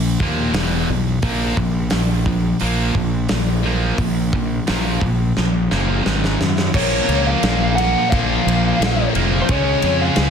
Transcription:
Already playing: A#1 A#2 F3
0.20 D#2 A#2 F3 A#3, kick
0.53 E1 E2 B2 E3, snare, open hi-hat
0.90 B1 E2 B2
1.22 A#1 A#2 F3 A#3, kick, open hi-hat
1.57 A#1 A#2 F3, kick
1.90 A#1 A#2 F3, snare, open hi-hat
2.26 A#2 F3, kick
2.60 A#1 A#2 F3 A#3, open hi-hat
2.95 A#1 A#2 F3, kick
3.29 A#1 A#2 F3, snare, open hi-hat
3.63 A#2 F3 A#3
3.98 A#1 A#2 F3, kick, open hi-hat
4.33 A#2 F3, kick
4.67 A#1 A#2 F3 A#3, snare, open hi-hat
5.01 A#1 A#2 F3, kick
5.37 A#1 A#2 F3, snare
5.71 F#1 A#2 F3 A#3, snare
6.06 G#1 G#2 D#3 G#3, snare
6.24 snare
6.40 F#2 G#2 D#3, snare
6.58 snare
6.74 A#1 A#2 F3 A#3 C#5, kick, crash
7.08 C#2 A#2 F3 A#3, ride
7.27 F5
7.43 A#1 A#2 F3 A#3, snare, ride
7.76 A#2 F3 A#3 F#5, ride
7.80 A#2 F3
8.10 A#1 A#2 F3 A#3 F5, kick, ride
8.47 A#1 A#2 F3 A#3, ride
8.79 A#1 A#2 F3 A#3, snare, ride
9.14 F1 A#2 F3 A#3, ride
9.42 C5
9.49 C#2 C#3 G#3 C#4 C#5, kick, ride
9.82 F2 C#3 G#3 C#4, ride
10.02 F5
10.16 C#2 C#3 G#3 C#4, snare, ride

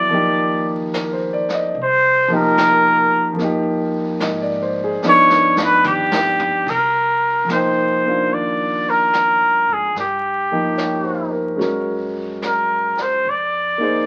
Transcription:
Already playing: F#3 B3 E4 G#4 D5
0.09 D#2 F3 A#3 D#4, brush sweep
0.14 G4
0.93 A#4, snare, hi-hat pedal
1.13 C5
1.33 D5
1.49 muted upright bass stroke, snare
1.54 D#5
1.75 C2, brush sweep
1.83 C5
2.28 F3 A#3 D#4
2.33 G4 A#4
2.58 snare, hi-hat pedal
3.13 muted upright bass stroke
3.33 F3
3.37 F2 A#3 D#4, brush sweep, snare
3.44 G4
4.20 G#2 D#5, snare, hi-hat pedal
4.42 D5
4.62 C5
4.84 G#4
5.02 G2 F3 B3 D4 D#4, snare
5.09 C#5
5.30 snare
5.56 snare
5.64 B4
5.84 G4, hi-hat pedal, mid tom
6.11 snare
6.39 floor tom
6.67 C2 A#4, brush sweep, kick, snare, ride
7.45 F3 A#3
7.49 D#4 C5, snare, hi-hat pedal
7.56 G5
8.05 A#3 D4 F4
8.31 D#2 D5, brush sweep
8.90 A#4
9.13 snare, hi-hat pedal
9.40 G2
9.67 G#2
9.73 G#4
9.95 G2, brush sweep, snare
10.00 G4
10.52 F3 A#3 D#4 G4
10.77 C#5, snare, hi-hat pedal
11.04 C5
11.31 A#4
11.56 F#2 G#3 C#4 F#4
11.60 A#4, brush sweep, snare
12.42 snare, hi-hat pedal
12.46 A#4
12.97 F#2, snare
13.02 C5
13.24 F2, brush sweep
13.29 D5
13.78 A#3 D#4 G#4
13.83 C5

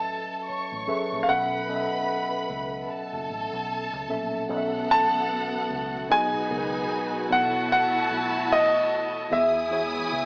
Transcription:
Already playing: A1 F#3 C#4 F#4 A4 B4 D#5 E5 A5
0.48 C#5 C#6, muted fingered electric bass stroke
0.72 A1
0.87 F#3 C#4 G#4 A4 B4 E5
1.12 A#1
1.23 F5
1.27 B1 B2 F#3 C#4 A4 B4 E5 F#5 B5
1.68 B2 F#3 C#4 A4 D#5
1.76 E5
2.50 C#2
2.89 A4 A5
3.13 F#1
3.30 A1
3.53 B1
3.93 C#2
4.08 A#1 B2 F#3 C#4 A4 E5
4.48 B1 B2 E3 F#3 A3 B3 C#4 F#4 A4 D#5 F#5
4.57 E5
4.91 A5
5.14 muted fingered electric bass stroke
5.54 muted fingered electric bass stroke
5.71 C#2
6.09 B1 B2 D#3 F#3 G#3 D#4 G#4 B4 D#5 G#5
6.34 muted fingered electric bass stroke
6.49 C#2 B2 F#3 D#4 G#4 A#4
6.57 B4
7.29 B1 B2 E3 A3 B3 D#4 E4 F#4 A4 C#5 F#5 A5
7.37 E4
7.72 F#5
8.11 B1
8.52 D#5
9.30 E2 E3 G#3 B3 E4 F#4 G#4 E5 G#5 D#6
9.70 E3 B3 F#4 G#4 C#5
10.12 C#2

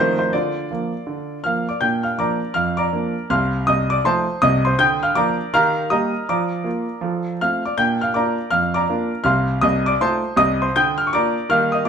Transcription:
Already playing: D#3 F3 C5
0.00 A3 C4 D#4
0.19 D#4 C5
0.33 D3 F4 D5
0.71 F3 A#3
1.07 D3
1.44 F3 A#3 F5 F6
1.69 D5 D6
1.81 A#2 D4 G5 G6
2.03 F5 F6
2.18 F3 A#3 D4 D5 A#5 D6
2.54 F2 F5 F6
2.77 D5 A#5 D6
2.92 F3 A#3 D4
3.30 C2 C3 F5 C6 F6
3.67 C2 C3 D#5 D#6
3.90 D5 D6
4.04 F3 A3 D#4 C5 A5 C6
4.42 C2 C3 D#5 D#6
4.65 C5 C6
4.79 D3 G5 G6
5.03 F5 F6
5.15 F3 A#3 D4 D5 A#5 D6
5.54 D#3 G4 F5 A#5 F6
5.90 G3 A#3 G4 D#5 A#5 D#6
6.29 F3 D5 A#5 D6
6.64 A#3 F4
7.01 F3 A4
7.41 A3 C4 F4 F5 F6
7.65 D5 D6
7.78 A#2 D4 G5 G6
8.01 F5 F6
8.14 A#3 D4 F4 D5 A#5 D6
8.51 F2 F5 F6
8.74 D5 A#5 D6
8.89 A#3 D4 F4
9.24 C2 C3 F5 C6 F6
9.61 C2 C3 D#5 D#6
9.86 D5 D6
10.00 A3 D#4 F4 C5 A5 C6
10.36 C2 C3 D#5 D#6
10.62 C5 C6
10.76 D3 G5 G6
10.98 F6
11.07 C#6
11.13 A#3 D4 F4 D5 A#5 D6
11.49 D#3 G3 A#3 D#4 G4 F5 F6
11.72 D#5 D#6
11.85 F2 D6

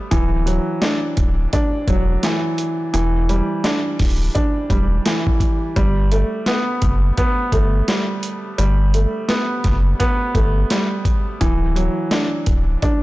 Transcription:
Already playing: G3 A3 B3
0.11 D1 E3, kick, closed hi-hat
0.46 F#3, closed hi-hat
0.82 D4, snare, closed hi-hat
1.17 D1, kick, closed hi-hat
1.53 D4, kick, closed hi-hat
1.88 E1 F#3, kick, closed hi-hat
2.23 E3, snare, closed hi-hat
2.58 closed hi-hat
2.94 E1 E3, closed hi-hat
3.29 G3, closed hi-hat
3.64 D4, snare, closed hi-hat
3.99 D1, kick, snare, open hi-hat
4.35 D4, kick, closed hi-hat
4.70 E1 G3, kick, closed hi-hat
5.06 E3, snare, closed hi-hat
5.27 kick
5.40 kick, closed hi-hat
5.76 G1 G3, kick, closed hi-hat
6.12 A3, closed hi-hat
6.46 B3, snare, closed hi-hat
6.82 F#1, kick, closed hi-hat
7.17 B3, kick, closed hi-hat
7.52 G1 A3, kick, closed hi-hat
7.88 G3, snare, closed hi-hat
8.23 closed hi-hat
8.58 G1 G3, closed hi-hat
8.94 A3, closed hi-hat
9.29 B3, snare, closed hi-hat
9.64 F#1, kick, snare, closed hi-hat
10.00 B3, kick, closed hi-hat
10.34 G1 A3, kick, closed hi-hat
10.70 G3, snare, closed hi-hat
11.05 kick, closed hi-hat
11.41 D1 E3, kick, closed hi-hat
11.76 F#3, closed hi-hat
12.11 D4, snare, closed hi-hat
12.46 D1, kick, closed hi-hat
12.82 D4, kick, closed hi-hat

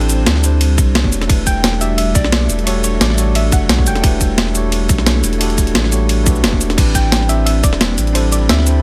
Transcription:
Already playing: A1 G3 C4 D4 E4 G4 A4 C5
0.01 closed hi-hat
0.09 closed hi-hat, shaker
0.26 D2, snare, closed hi-hat, ride
0.36 snare
0.41 C4 D4 E4 G4, closed hi-hat, shaker
0.46 C5
0.61 closed hi-hat, ride
0.78 C2, kick, closed hi-hat, shaker
0.95 snare, closed hi-hat, ride
1.03 E1 A3 D4 F#4 G4 C#5, kick
1.12 A4 E5, closed hi-hat, shaker
1.21 snare, closed hi-hat
1.27 E1 A3 D4 E4 G4, kick, closed hi-hat, ride
1.32 B4
1.47 G5, kick, closed hi-hat, shaker
1.64 snare, closed hi-hat, ride
1.73 snare
1.79 A3 D4 F#4 G4 E5, closed hi-hat, shaker
1.83 D5
1.98 E5, closed hi-hat, ride
2.15 B1 D5, kick, closed hi-hat, shaker
2.24 snare
2.32 snare, closed hi-hat, ride
2.49 E1, closed hi-hat, shaker
2.59 closed hi-hat
2.64 A3 D4 F#4 G4 C#5, closed hi-hat, ride
2.69 A4
2.84 C#5, closed hi-hat, shaker
3.01 A1 D5, snare, closed hi-hat, ride
3.10 snare
3.15 A3 D4 F#4 G4, closed hi-hat, shaker
3.20 C#5
3.35 E5, closed hi-hat, ride
3.52 F#1 F#5, kick, closed hi-hat, shaker
3.69 B1, snare, closed hi-hat, ride
3.77 A3 D4 F#4 G4 C#5, kick
3.86 E1 E4 G5, closed hi-hat, shaker
3.96 snare, closed hi-hat
4.01 E1 A3 D4 E4 G4, kick, closed hi-hat, ride
4.06 B4
4.21 kick, closed hi-hat, shaker
4.38 snare, closed hi-hat, ride
4.47 snare
4.53 A3 D4 F#4 G4, closed hi-hat, shaker
4.57 C#5
4.72 closed hi-hat, ride
4.89 B1, kick, closed hi-hat, shaker
4.98 snare
5.06 snare, closed hi-hat, ride
5.24 E1, closed hi-hat, shaker
5.33 closed hi-hat
5.38 A3 D4 F#4 G4, closed hi-hat, ride
5.43 A4
5.50 closed hi-hat
5.58 kick, closed hi-hat, shaker
5.67 closed hi-hat
5.75 A1, snare, closed hi-hat, ride
5.84 snare
5.91 A3 D4 F#4 G4 C#5, closed hi-hat, shaker
6.09 closed hi-hat, ride
6.24 B1 A3 D4 F#4 G4, kick, closed hi-hat, shaker
6.29 B4
6.36 shaker
6.43 E1, snare, closed hi-hat, ride
6.53 kick
6.61 closed hi-hat, shaker
6.70 snare, closed hi-hat
6.75 A1 G3 C4 D4 E4 G4 B5, kick, closed hi-hat, crash, ride
6.80 B4
6.95 G5, kick, closed hi-hat, shaker
7.12 snare, closed hi-hat, ride
7.21 snare
7.27 C4 D4 E4 G4 E5, closed hi-hat, shaker
7.31 C5
7.46 E5, closed hi-hat, ride
7.63 E1 D5, kick, closed hi-hat, shaker
7.73 snare
7.81 snare, closed hi-hat, ride
7.98 A1, closed hi-hat, shaker
8.07 closed hi-hat
8.12 C4 D4 E4 G4 C5, closed hi-hat, ride
8.17 A4
8.32 D5, closed hi-hat, shaker
8.49 D2 E5, snare, closed hi-hat, ride
8.59 snare
8.64 C4 D4 E4 G4, closed hi-hat, shaker
8.69 C5

